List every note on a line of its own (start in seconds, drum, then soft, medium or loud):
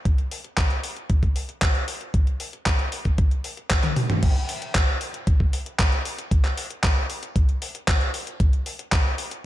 0.05 kick loud
0.05 closed hi-hat medium
0.18 closed hi-hat soft
0.31 open hi-hat loud
0.44 closed hi-hat soft
0.57 kick loud
0.57 clap loud
0.57 closed hi-hat medium
0.70 closed hi-hat soft
0.84 open hi-hat loud
0.97 closed hi-hat soft
1.10 kick loud
1.10 closed hi-hat medium
1.23 kick medium
1.23 closed hi-hat soft
1.36 open hi-hat loud
1.49 closed hi-hat soft
1.62 kick loud
1.62 clap loud
1.62 closed hi-hat medium
1.75 closed hi-hat soft
1.88 open hi-hat loud
2.01 closed hi-hat soft
2.14 kick loud
2.14 closed hi-hat medium
2.27 closed hi-hat soft
2.40 open hi-hat loud
2.53 closed hi-hat soft
2.66 kick loud
2.66 clap loud
2.66 closed hi-hat medium
2.79 closed hi-hat soft
2.92 open hi-hat loud
3.05 kick medium
3.05 closed hi-hat soft
3.18 kick loud
3.18 closed hi-hat medium
3.31 closed hi-hat soft
3.44 open hi-hat loud
3.57 closed hi-hat soft
3.70 kick loud
3.70 clap loud
3.70 open hi-hat medium
3.83 clap soft
3.83 closed hi-hat soft
3.83 high tom medium
3.96 open hi-hat loud
3.96 mid tom medium
4.10 closed hi-hat soft
4.10 mid tom medium
4.23 kick loud
4.23 closed hi-hat medium
4.23 crash loud
4.36 closed hi-hat soft
4.49 open hi-hat loud
4.62 closed hi-hat medium
4.75 kick loud
4.75 clap loud
4.75 closed hi-hat medium
5.01 open hi-hat loud
5.14 closed hi-hat medium
5.27 kick loud
5.27 closed hi-hat medium
5.40 kick medium
5.53 open hi-hat loud
5.66 closed hi-hat medium
5.79 kick loud
5.79 clap loud
5.79 closed hi-hat medium
5.92 closed hi-hat soft
6.05 open hi-hat loud
6.18 closed hi-hat medium
6.31 kick loud
6.31 closed hi-hat medium
6.45 clap soft
6.45 closed hi-hat soft
6.58 open hi-hat loud
6.71 closed hi-hat medium
6.84 kick loud
6.84 clap loud
6.84 closed hi-hat medium
7.10 open hi-hat loud
7.23 closed hi-hat medium
7.36 kick loud
7.36 closed hi-hat medium
7.49 closed hi-hat soft
7.62 open hi-hat loud
7.75 closed hi-hat medium
7.88 kick loud
7.88 clap loud
7.88 open hi-hat medium
8.01 closed hi-hat soft
8.14 open hi-hat loud
8.27 closed hi-hat medium
8.40 kick loud
8.40 closed hi-hat medium
8.53 closed hi-hat soft
8.66 open hi-hat loud
8.79 closed hi-hat medium
8.92 kick loud
8.92 clap loud
8.92 closed hi-hat medium
9.18 open hi-hat loud
9.31 closed hi-hat medium